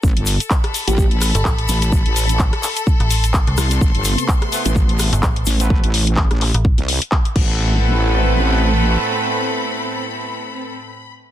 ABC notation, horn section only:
X:1
M:4/4
L:1/16
Q:"Swing 16ths" 1/4=127
K:Am
V:1 name="Horn section"
z16 | z16 | z6 [A,B,CEB]2 z6 z [A,B,CEB]- | [A,B,CEB]2 z12 [A,B,CEB]2- |
[A,B,CEB]16- | [A,B,CEB]16 |]